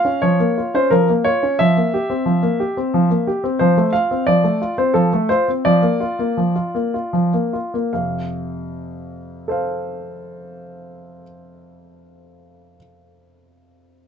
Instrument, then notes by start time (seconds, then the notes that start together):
grand piano
Already playing: F5
0.05 C#4
0.22 F3 C#5
0.40 A#3
0.58 F4
0.74 C#4 C5
0.90 F3 A#4
1.09 A#3
1.25 F4 C#5
1.43 C#4
1.59 F3 E5
1.77 A#3
1.94 G4
2.10 C4
2.26 F3
2.43 A#3
2.60 G4
2.77 C4
2.94 F3
3.10 A#3
3.27 G4
3.44 C4
3.59 F3 C5
3.77 A3
3.93 F4 F5
4.11 C4
4.27 F3 D5
4.44 A3
4.62 F4
4.78 C4 C5
4.94 F3 A4
5.13 A3
5.29 F4 C5
5.48 C4
5.65 F3 D5
5.82 A#3
6.00 F4
6.19 A#3
6.37 F3
6.56 F4
6.75 A#3
6.94 F4
7.13 F3
7.34 A#3
7.53 F4
7.74 A#3
7.93 F2 C3 F5
9.48 A4 C5 F5